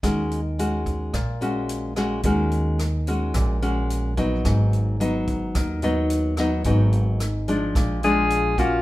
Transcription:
<<
  \new Staff \with { instrumentName = "Alto saxophone" } { \time 4/4 \key ees \minor \tempo 4 = 109 r1 | r1 | r1 | r2 r8 aes'4 f'8 | }
  \new Staff \with { instrumentName = "Nylon-string guitar" } { \time 4/4 \key ees \minor << { <aes des' ges'>8 r8 <aes des' ges'>4 r8 <aes des' ges'>4 <aes des' ges'>8 | <aes des' ges'>4 r8 <aes des' ges'>4 <aes des' ges'>4 <ges ces' ees'>8~ | <ges ces' ees'>4 <ges ces' ees'>4. <ges ces' ees'>4 <ges ces' ees'>8 | <ges ces' ees'>4 r8 <f aes d'>4 <f aes d'>4 <bes des' ges'>8 | } \\ { ees2 bes,2 | ees2 bes,2 | aes,2 ees2 | aes,2 bes,2 | } >> }
  \new Staff \with { instrumentName = "Upright bass" } { \clef bass \time 4/4 \key ees \minor ees,2 bes,,2 | ees,2 bes,,2 | aes,,2 ees,2 | aes,,2 bes,,2 | }
  \new DrumStaff \with { instrumentName = "Drums" } \drummode { \time 4/4 <hh bd ss>8 hh8 hh8 <hh bd>8 <hh bd ss>8 hh8 hh8 <hh ss>8 | <hh bd>8 hh8 <hh ss>8 hh8 <hh bd ss>8 hh8 hh8 <hh bd>8 | <hh bd ss>8 hh8 hh8 <hh bd>8 <hh bd ss>8 hh8 hh8 <hh ss>8 | <hh bd>8 hh8 <hh ss>8 hh8 <hh bd ss>8 hh8 hh8 <hh bd>8 | }
>>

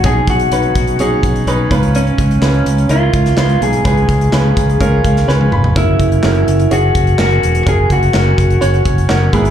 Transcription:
<<
  \new Staff \with { instrumentName = "Clean electric guitar" } { \time 4/4 \key fis \mixolydian \tempo 4 = 126 gis'8 fis'2 r4. | cis'2 eis'4 eis'8 gis'8 | gis'2.~ gis'8 r8 | e'2 fis'4 fis'4 |
gis'8 fis'2 r4. | }
  \new Staff \with { instrumentName = "Grand piano" } { \time 4/4 \key fis \mixolydian <cis' dis' gis'>4 <cis' dis' b'>4 <cis' dis' gis'>4 <cis' dis' b'>8 <cis' eis' b'>8~ | <cis' eis' b'>4 <cis' eis' b'>4 <cis' e' eis' ais'>4 <cis' eis' b'>4 | <cis' eis' b'>4 <cis' eis' b'>4 <cis' eis' ais'>4 <cis' eis' b'>4 | <cis' fis' ais'>4 <cis' fis' ais'>4 <cis' fis' gis'>4 <cis' fis' ais'>4 |
<cis' fis' ais'>4 <cis' fis' ais'>4 <cis' fis' cis''>4 <cis' fis' ais'>8 <b e' gis'>8 | }
  \new Staff \with { instrumentName = "Grand piano" } { \clef bass \time 4/4 \key fis \mixolydian r2. r8 gis,8~ | gis,4 r2 r8 gis,8~ | gis,4 r4. eis''8 gis''8 b''8 | cis4. r2 r8 |
cis4. r4. fis''8 <gis, gis b''>8 | }
  \new Staff \with { instrumentName = "Fingered electric bass" } { \clef bass \time 4/4 \key fis \mixolydian b,,8 b,,8 b,,8 b,,8 b,,8 b,,8 b,,8 cis,8~ | cis,8 cis,8 cis,8 cis,8 cis,8 cis,8 cis,8 b,,8 | cis,8 cis,8 cis,8 cis,8 cis,8 cis,8 cis,8 eis,,8 | fis,,8 fis,,8 fis,,8 fis,,8 fis,,8 fis,,8 fis,,8 e,,8 |
fis,,8 fis,,8 fis,,8 fis,,8 fis,,8 fis,,8 fis,,8 gis,,8 | }
  \new DrumStaff \with { instrumentName = "Drums" } \drummode { \time 4/4 <hh bd>8 <hh bd>16 hh16 hh16 hh16 <hh bd>16 hh16 hh8 <hh bd>16 hh16 hh8 <hh bd>16 hh16 | hh16 hh16 <hh bd>16 hh16 <hc sn>16 hh16 hh16 hh16 hh8 <hh bd>16 <hh sn>16 <hc sn>16 hh16 hh16 hh16 | <hh bd>16 hh16 <hh bd>16 hh16 <hc sn>8 <hh bd>16 hh16 <hh bd>8 <hh bd>16 <hh sn>16 sn16 tommh16 toml16 tomfh16 | <hh bd>8 <hh bd>16 hh16 <hc sn>16 hh16 hh16 hh16 hh8 <hh bd>16 hh16 <hc sn>16 hh16 hh16 hh16 |
<hh bd>8 <hh bd>16 hh16 <hc sn>8 <hh bd>16 hh16 hh16 hh16 <hh bd>16 hh16 <hc sn>8 <hh bd>16 hh16 | }
>>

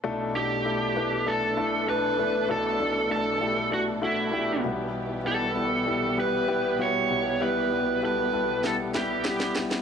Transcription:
<<
  \new Staff \with { instrumentName = "Lead electric guitar" } { \time 4/4 \key a \mixolydian \tempo 4 = 98 r8 g'4. a'4 b'4 | a'4 a'4 fis'8 e'4 r8 | r8 a'4. b'4 cis''4 | b'4 b'4 a'8 g'4 r8 | }
  \new Staff \with { instrumentName = "Grand piano" } { \time 4/4 \key a \mixolydian <a d' e' a'>8 <a d' e' a'>8 <a d' e' a'>8 <a d' e' b'>8 <a d' e' a'>8 <a d' e' a'>8 <a d' e' a'>8 <a d' e' b'>8 | <a d' e' a'>8 <a d' e' a'>8 <a d' e' a'>8 <a d' e' g'>8 <a d' e' a'>8 <a d' e' fis'>8 <a d' e' g'>8 <g b e' g'>8~ | <g b e' g'>8 <g b e' g'>8 <g b e' g'>8 <g b e' g'>8 <g b e' g'>8 <g b e' g'>8 <g b e' fis'>8 <g b e' g'>8 | <g b e' g'>8 <g b e' g'>8 <g b e' a'>8 <g b e' a'>8 <g b e' g'>8 <g b e' g'>8 <g b e' g'>8 <g b e' g'>8 | }
  \new Staff \with { instrumentName = "Grand piano" } { \clef bass \time 4/4 \key a \mixolydian <b,, b,>1 | <b,, b,>2.~ <b,, b,>8 <b,, b,>8~ | <b,, b,>2.~ <b,, b,>8 <b,, b,>8~ | <b,, b,>2.~ <b,, b,>8 r8 | }
  \new Staff \with { instrumentName = "String section" } { \time 4/4 \key a \mixolydian << { <a d' a'>1~ | <a d' a'>2.~ <a d' a'>8 <g b g'>8~ | <g b g'>1~ | <g b g'>1 | } \\ { <b, e>1~ | <b, e>1~ | <b, e>1~ | <b, e>1 | } >> }
  \new DrumStaff \with { instrumentName = "Drums" } \drummode { \time 4/4 r4 r4 r4 r4 | r4 r4 r4 r4 | r4 r4 r4 r4 | r4 r4 sn8 sn8 sn16 sn16 sn16 sn16 | }
>>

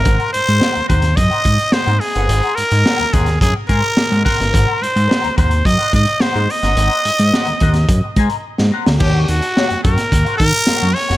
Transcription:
<<
  \new Staff \with { instrumentName = "Clean electric guitar" } { \time 4/4 \key aes \major \tempo 4 = 107 <bes' c'' ges''>8 r8 <bes' c'' ges''>16 r16 <bes' c'' ges''>16 r8 <bes' c'' ges''>16 r8 <bes' c'' ges''>16 r8 <bes' c'' ges''>16 | <bes' c'' ges''>8 r8 <bes' c'' ges''>16 r16 <bes' c'' ges''>16 r8. <bes' c'' aes''>16 r8. <bes' c'' ges''>16 r16 | <bes' c'' ges''>8 r8 <bes' c'' ges''>16 r16 <bes' c'' ges''>16 r8 <bes' c'' ges''>16 r8 <bes' c'' ges''>16 r8 <bes' c'' ges''>16 | <bes' c'' ges''>8 r8 <bes' c'' ges''>16 r16 <bes' c'' ges''>16 r8. <bes' c'' aes''>16 r8. <bes' c'' ges''>16 r16 |
<g' des'' fis''>8 r8 <g' des'' fis''>16 r16 <g' des'' fis''>16 r8 <g' des'' fis''>16 r8 <g' des'' fis''>16 r8 <g' des'' fis''>16 | }
  \new Staff \with { instrumentName = "Trumpet" } { \time 4/4 \key aes \major bes'8 c''4 c''8 ees''4 c''8 aes'8~ | aes'8 bes'4 aes'8 aes'8 bes'4 bes'8~ | bes'8 c''4 c''8 ees''8 ees''8 c''8 ees''8~ | ees''2. r4 |
g'16. g'32 fis'4 bes'4 bes'4 des''8 | }
  \new Staff \with { instrumentName = "Analog synth bass" } { \clef bass \time 4/4 \key aes \major aes,,16 r16 aes,16 aes,16 r16 ees,16 ees,8 ges,16 r16 aes,16 r8 aes,16 r16 g,,16 | aes,,16 r16 aes,16 aes,16 r16 ees,16 ees,8 ges,16 r16 aes,16 r8 aes,16 r16 g,,16 | aes,,16 r16 aes,16 aes,16 r16 ees,16 ees,8 ges,16 r16 aes,16 r8 aes,16 r16 g,,16 | aes,,16 r16 aes,16 aes,16 r16 ees,16 ees,8 ges,16 r16 aes,16 r8 aes,16 r16 d,16 |
ees,8 ees,16 r8 fis,16 fis,16 r16 ees,16 r16 ees16 r16 fis,16 fis,16 r16 f,,16 | }
  \new DrumStaff \with { instrumentName = "Drums" } \drummode { \time 4/4 <hh bd>16 hh16 hh16 hh16 sn16 hh16 <hh bd>16 <hh sn>16 <hh bd>16 hh16 <hh bd>16 hh16 sn16 hh16 hho16 hh16 | hh16 hh16 hh16 hh16 sn16 hh16 <hh bd>16 <hh sn>16 <hh bd>8 <hh bd>16 hh16 sn16 hh16 <hho bd>16 <hh sn>16 | <hh bd>8 hh16 hh16 sn16 hh16 <hh bd>16 hh16 <hh bd>16 hh16 <hh bd>16 hh16 sn16 hh16 hho16 <hh sn>16 | hh16 hh16 hh16 hh16 sn16 hh16 <hh bd>16 <hh sn>16 <hh bd>8 <hh bd>16 hh16 r16 sn8 sn16 |
<cymc bd>8 hh16 hh16 sn16 hh16 <hh bd>16 <hh sn>16 <hh bd>16 hh16 <hh bd>16 hh16 sn16 hh16 hho16 <hh sn>16 | }
>>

